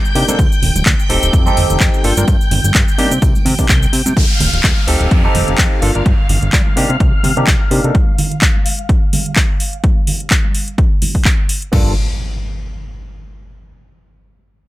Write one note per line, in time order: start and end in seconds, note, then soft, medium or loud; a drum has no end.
0.00 4.18 G5 medium
0.00 4.18 G6 medium
0.05 shaker soft
0.15 0.24 C3 loud
0.15 0.25 A#3 medium
0.15 0.25 D4 medium
0.15 0.25 D#4 medium
0.15 0.26 G4 medium
0.15 open hi-hat loud
0.15 tambourine loud
0.28 0.36 C3 medium
0.28 0.37 A#3 medium
0.28 0.38 D4 medium
0.28 0.38 D#4 medium
0.28 0.38 A4 medium
0.28 closed hi-hat medium
0.28 tambourine soft
0.28 high conga medium
0.28 shaker medium
0.39 0.48 D2 loud
0.39 kick loud
0.39 closed hi-hat medium
0.39 tambourine medium
0.39 shaker medium
0.52 tambourine soft
0.52 shaker soft
0.62 0.71 D1 medium
0.62 open hi-hat loud
0.62 tambourine medium
0.62 low conga medium
0.75 0.83 D1 medium
0.75 closed hi-hat medium
0.75 tambourine soft
0.75 high conga medium
0.75 shaker medium
0.86 0.95 D2 loud
0.86 kick loud
0.86 clap loud
0.86 closed hi-hat medium
0.86 tambourine soft
0.86 shaker medium
0.99 tambourine soft
0.99 shaker soft
1.09 1.19 D1 medium
1.09 1.43 C4 loud
1.09 1.43 D#4 medium
1.09 1.43 G4 medium
1.09 1.44 A4 loud
1.09 open hi-hat loud
1.09 tambourine loud
1.23 1.30 D1 medium
1.23 closed hi-hat medium
1.23 tambourine soft
1.23 shaker medium
1.33 1.50 F2 loud
1.33 kick loud
1.33 closed hi-hat medium
1.33 tambourine medium
1.33 shaker medium
1.46 2.01 C4 medium
1.46 2.02 D#4 medium
1.46 2.02 G4 medium
1.46 2.02 A4 loud
1.46 tambourine soft
1.46 high conga medium
1.46 shaker soft
1.57 1.66 F1 medium
1.57 open hi-hat loud
1.57 tambourine medium
1.57 low conga medium
1.70 1.77 F1 medium
1.70 closed hi-hat medium
1.70 tambourine soft
1.70 shaker medium
1.80 1.90 F2 medium
1.80 kick loud
1.80 clap loud
1.80 shaker medium
1.94 shaker soft
2.04 2.13 G1 loud
2.04 2.12 A#3 medium
2.04 2.12 D4 medium
2.04 2.12 F4 medium
2.04 2.12 A4 loud
2.04 open hi-hat loud
2.04 tambourine medium
2.17 2.25 G1 medium
2.17 2.24 A#3 medium
2.17 2.24 D4 medium
2.17 2.24 F4 medium
2.17 2.24 A#4 medium
2.17 closed hi-hat medium
2.17 tambourine soft
2.17 high conga loud
2.17 shaker medium
2.28 2.37 G2 loud
2.28 kick loud
2.28 closed hi-hat medium
2.28 tambourine medium
2.28 shaker medium
2.41 2.49 G1 soft
2.41 tambourine soft
2.41 shaker soft
2.51 2.60 G1 medium
2.51 open hi-hat loud
2.51 tambourine loud
2.51 low conga loud
2.64 2.72 G1 medium
2.64 closed hi-hat medium
2.64 tambourine soft
2.64 high conga medium
2.64 shaker medium
2.74 2.84 G2 loud
2.74 kick loud
2.74 clap loud
2.74 closed hi-hat medium
2.74 tambourine medium
2.74 shaker medium
2.88 tambourine soft
2.88 shaker soft
2.98 3.08 C3 medium
2.98 3.11 A#3 medium
2.98 3.11 D4 medium
2.98 3.12 D#4 medium
2.98 3.12 G4 loud
2.98 open hi-hat loud
2.98 tambourine loud
2.98 high conga medium
3.11 3.19 C3 loud
3.11 closed hi-hat medium
3.11 tambourine soft
3.11 shaker medium
3.22 3.34 C2 loud
3.22 kick loud
3.22 closed hi-hat medium
3.22 tambourine medium
3.22 shaker medium
3.35 3.44 C3 soft
3.35 tambourine soft
3.35 high conga medium
3.35 shaker soft
3.45 3.55 C3 loud
3.45 open hi-hat loud
3.45 tambourine loud
3.45 low conga loud
3.58 3.66 C3 medium
3.58 3.65 A#3 medium
3.58 3.65 D4 medium
3.58 3.66 D#4 medium
3.58 3.66 G4 medium
3.58 kick medium
3.58 open hi-hat medium
3.58 tambourine soft
3.58 shaker medium
3.69 3.87 C2 medium
3.69 kick loud
3.69 clap loud
3.69 tambourine medium
3.69 high conga medium
3.69 shaker medium
3.83 tambourine soft
3.83 shaker soft
3.93 4.02 C3 medium
3.93 open hi-hat loud
3.93 tambourine loud
4.06 4.13 C3 loud
4.06 closed hi-hat medium
4.06 tambourine soft
4.06 high conga medium
4.06 shaker medium
4.17 4.26 D2 loud
4.17 11.74 F5 medium
4.17 11.74 F6 medium
4.17 kick loud
4.17 closed hi-hat medium
4.17 tambourine medium
4.17 downlifter medium
4.17 high conga medium
4.31 tambourine soft
4.40 4.49 D1 medium
4.40 open hi-hat loud
4.40 tambourine loud
4.40 low conga loud
4.53 4.61 D1 medium
4.53 closed hi-hat medium
4.53 tambourine soft
4.63 4.73 D2 loud
4.63 kick loud
4.63 clap loud
4.63 closed hi-hat medium
4.77 tambourine soft
4.77 high conga medium
4.87 4.97 D1 medium
4.87 5.21 C4 medium
4.87 5.21 D#4 medium
4.87 5.21 G4 medium
4.87 5.21 A4 loud
4.87 open hi-hat loud
4.87 tambourine medium
5.01 5.08 D1 medium
5.01 closed hi-hat medium
5.01 tambourine soft
5.11 5.28 F2 loud
5.11 kick loud
5.11 closed hi-hat medium
5.11 tambourine medium
5.24 5.79 C4 medium
5.24 5.80 D#4 medium
5.24 5.80 G4 medium
5.24 5.80 A4 loud
5.24 tambourine soft
5.35 5.44 F1 medium
5.35 open hi-hat loud
5.35 tambourine medium
5.35 high conga loud
5.35 low conga loud
5.48 5.55 F1 medium
5.48 closed hi-hat medium
5.48 tambourine soft
5.58 5.68 F2 medium
5.58 kick loud
5.58 clap loud
5.82 5.91 G1 medium
5.82 5.90 A#3 medium
5.82 5.90 D4 medium
5.82 5.90 F4 medium
5.82 5.90 A4 loud
5.82 open hi-hat loud
5.82 tambourine loud
5.95 6.03 G1 medium
5.95 6.02 A#3 medium
5.95 6.02 D4 medium
5.95 6.02 F4 medium
5.95 6.02 A#4 medium
5.95 closed hi-hat medium
5.95 tambourine soft
6.06 6.15 G2 loud
6.06 kick loud
6.06 closed hi-hat medium
6.06 tambourine medium
6.06 high conga medium
6.19 6.27 G1 soft
6.19 tambourine soft
6.29 6.38 G1 medium
6.29 open hi-hat loud
6.29 tambourine loud
6.29 low conga loud
6.42 6.50 G1 medium
6.42 closed hi-hat medium
6.42 tambourine soft
6.53 6.62 G2 loud
6.53 kick loud
6.53 clap loud
6.53 closed hi-hat medium
6.66 tambourine soft
6.66 high conga medium
6.76 6.86 C3 medium
6.76 6.89 A#3 loud
6.76 6.89 D4 medium
6.76 6.90 D#4 medium
6.76 6.90 G4 loud
6.76 open hi-hat loud
6.76 tambourine medium
6.90 6.97 C3 medium
6.90 closed hi-hat medium
6.90 tambourine soft
7.00 7.13 C2 loud
7.00 kick loud
7.00 closed hi-hat medium
7.13 7.22 C3 soft
7.13 tambourine soft
7.23 7.33 C3 medium
7.23 open hi-hat loud
7.23 tambourine medium
7.23 high conga medium
7.23 low conga medium
7.37 7.44 C3 medium
7.37 7.47 A#3 medium
7.37 7.47 D4 medium
7.37 7.47 D#4 medium
7.37 7.48 G4 loud
7.37 closed hi-hat medium
7.37 tambourine soft
7.47 7.57 C2 medium
7.47 kick loud
7.47 clap loud
7.47 tambourine soft
7.71 7.80 C3 loud
7.71 7.81 A#3 medium
7.71 7.81 D4 medium
7.71 7.81 D#4 medium
7.71 7.81 G4 medium
7.71 open hi-hat loud
7.84 7.91 C3 medium
7.84 7.93 A#3 medium
7.84 7.94 D4 medium
7.84 7.94 D#4 medium
7.84 7.94 A4 medium
7.84 closed hi-hat medium
7.95 kick loud
7.95 closed hi-hat medium
7.95 tambourine medium
7.95 high conga loud
8.08 tambourine soft
8.18 open hi-hat loud
8.18 tambourine medium
8.18 low conga loud
8.31 closed hi-hat soft
8.31 tambourine soft
8.42 kick loud
8.42 clap loud
8.42 closed hi-hat medium
8.56 tambourine soft
8.56 high conga medium
8.66 open hi-hat loud
8.66 tambourine medium
8.79 closed hi-hat soft
8.79 tambourine soft
8.89 kick loud
8.89 closed hi-hat medium
9.13 open hi-hat loud
9.13 tambourine medium
9.13 high conga medium
9.13 low conga medium
9.26 closed hi-hat medium
9.26 tambourine soft
9.36 kick loud
9.36 clap loud
9.60 open hi-hat loud
9.60 tambourine medium
9.73 closed hi-hat medium
9.73 tambourine soft
9.84 kick loud
9.84 closed hi-hat medium
9.84 tambourine soft
9.84 high conga loud
9.97 tambourine soft
10.07 open hi-hat loud
10.07 tambourine medium
10.07 low conga medium
10.20 closed hi-hat soft
10.20 tambourine soft
10.30 kick loud
10.30 clap loud
10.30 closed hi-hat medium
10.44 tambourine soft
10.44 high conga medium
10.55 open hi-hat loud
10.55 tambourine medium
10.68 closed hi-hat soft
10.78 kick loud
10.78 closed hi-hat medium
11.02 open hi-hat loud
11.02 tambourine medium
11.02 high conga medium
11.02 low conga medium
11.15 kick medium
11.15 open hi-hat medium
11.25 kick loud
11.25 clap loud
11.49 open hi-hat loud
11.62 closed hi-hat medium
11.72 11.95 G2 loud
11.72 11.90 A#3 medium
11.72 11.91 D4 medium
11.72 11.91 F4 medium
11.72 11.91 A4 medium
11.72 kick loud
11.72 crash medium
11.72 impact medium